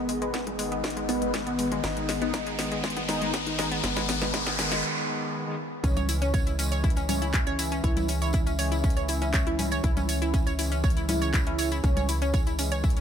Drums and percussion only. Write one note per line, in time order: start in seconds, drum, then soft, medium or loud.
0.09 open hi-hat loud
0.22 closed hi-hat soft
0.34 kick loud
0.34 snare medium
0.34 closed hi-hat medium
0.47 closed hi-hat soft
0.47 low conga loud
0.59 open hi-hat loud
0.72 closed hi-hat soft
0.84 kick loud
0.84 snare medium
0.84 closed hi-hat soft
0.90 closed hi-hat medium
0.97 closed hi-hat soft
1.09 open hi-hat loud
1.09 low conga medium
1.22 closed hi-hat soft
1.34 kick loud
1.34 snare medium
1.34 closed hi-hat medium
1.47 closed hi-hat soft
1.59 open hi-hat loud
1.72 closed hi-hat soft
1.72 low conga medium
1.84 kick loud
1.84 snare medium
1.84 closed hi-hat medium
1.97 closed hi-hat soft
2.09 snare medium
2.09 open hi-hat loud
2.22 closed hi-hat soft
2.34 kick loud
2.34 snare medium
2.34 closed hi-hat medium
2.34 low conga loud
2.47 closed hi-hat soft
2.59 snare medium
2.59 open hi-hat loud
2.72 closed hi-hat soft
2.84 kick loud
2.84 snare medium
2.84 closed hi-hat soft
2.90 closed hi-hat medium
2.97 closed hi-hat soft
2.97 low conga loud
3.09 snare medium
3.09 open hi-hat loud
3.22 closed hi-hat soft
3.34 kick loud
3.34 snare medium
3.34 closed hi-hat medium
3.47 closed hi-hat soft
3.59 snare medium
3.59 open hi-hat loud
3.59 low conga loud
3.72 closed hi-hat soft
3.84 kick loud
3.84 snare medium
3.84 closed hi-hat medium
3.97 snare medium
3.97 closed hi-hat soft
4.09 snare loud
4.09 open hi-hat loud
4.22 snare medium
4.22 closed hi-hat soft
4.22 low conga loud
4.34 kick loud
4.34 snare loud
4.34 closed hi-hat medium
4.47 snare medium
4.47 closed hi-hat soft
4.59 snare loud
4.59 open hi-hat loud
4.72 snare medium
4.72 closed hi-hat soft
5.84 kick loud
5.84 closed hi-hat medium
5.84 tambourine medium
5.97 closed hi-hat soft
5.97 tambourine soft
5.97 low conga loud
6.09 open hi-hat loud
6.09 tambourine medium
6.22 closed hi-hat soft
6.22 tambourine soft
6.34 kick loud
6.34 closed hi-hat medium
6.34 tambourine medium
6.47 closed hi-hat soft
6.47 tambourine soft
6.59 open hi-hat loud
6.59 tambourine loud
6.72 closed hi-hat soft
6.72 tambourine soft
6.84 kick loud
6.84 closed hi-hat soft
6.84 tambourine soft
6.90 closed hi-hat medium
6.96 closed hi-hat soft
6.96 tambourine soft
7.09 open hi-hat loud
7.09 tambourine medium
7.09 low conga medium
7.22 closed hi-hat soft
7.22 tambourine soft
7.34 kick loud
7.34 clap loud
7.34 closed hi-hat medium
7.34 tambourine soft
7.47 closed hi-hat soft
7.59 open hi-hat loud
7.59 tambourine loud
7.72 closed hi-hat soft
7.72 tambourine soft
7.84 kick loud
7.84 closed hi-hat medium
7.84 tambourine soft
7.97 closed hi-hat soft
7.97 tambourine soft
7.97 low conga medium
8.08 open hi-hat loud
8.08 tambourine loud
8.22 closed hi-hat soft
8.22 tambourine soft
8.33 kick loud
8.33 closed hi-hat medium
8.33 tambourine medium
8.46 closed hi-hat soft
8.46 tambourine soft
8.59 open hi-hat loud
8.59 tambourine medium
8.72 closed hi-hat soft
8.72 tambourine soft
8.84 kick loud
8.84 closed hi-hat soft
8.84 tambourine medium
8.90 closed hi-hat medium
8.97 closed hi-hat soft
8.97 tambourine soft
9.08 open hi-hat loud
9.08 tambourine medium
9.22 closed hi-hat soft
9.22 tambourine soft
9.34 kick loud
9.34 clap loud
9.34 closed hi-hat medium
9.34 tambourine medium
9.47 closed hi-hat soft
9.59 open hi-hat loud
9.59 tambourine loud
9.59 low conga medium
9.71 closed hi-hat soft
9.71 tambourine soft
9.84 kick loud
9.84 closed hi-hat medium
9.84 tambourine medium
9.97 closed hi-hat soft
9.97 tambourine soft
9.97 low conga medium
10.09 open hi-hat loud
10.09 tambourine loud
10.22 closed hi-hat soft
10.22 tambourine soft
10.34 kick loud
10.34 closed hi-hat medium
10.34 tambourine medium
10.47 closed hi-hat soft
10.47 tambourine soft
10.59 open hi-hat loud
10.59 tambourine loud
10.72 closed hi-hat soft
10.72 tambourine soft
10.84 kick loud
10.84 closed hi-hat soft
10.84 tambourine medium
10.90 closed hi-hat medium
10.97 closed hi-hat soft
10.97 tambourine soft
11.09 open hi-hat loud
11.09 tambourine medium
11.09 low conga medium
11.22 closed hi-hat soft
11.22 tambourine soft
11.34 kick loud
11.34 clap loud
11.34 closed hi-hat medium
11.34 tambourine medium
11.47 closed hi-hat soft
11.58 open hi-hat loud
11.58 tambourine medium
11.71 closed hi-hat soft
11.71 tambourine soft
11.84 kick loud
11.84 closed hi-hat medium
11.84 tambourine medium
11.97 closed hi-hat soft
11.97 tambourine soft
11.97 low conga medium
12.09 open hi-hat loud
12.09 tambourine medium
12.22 closed hi-hat soft
12.22 tambourine soft
12.34 kick loud
12.34 closed hi-hat medium
12.34 tambourine medium
12.47 closed hi-hat soft
12.47 tambourine soft
12.59 open hi-hat loud
12.59 tambourine medium
12.72 closed hi-hat soft
12.72 tambourine soft
12.84 kick loud
12.84 closed hi-hat soft
12.84 tambourine medium
12.90 closed hi-hat medium
12.96 closed hi-hat soft
12.96 tambourine soft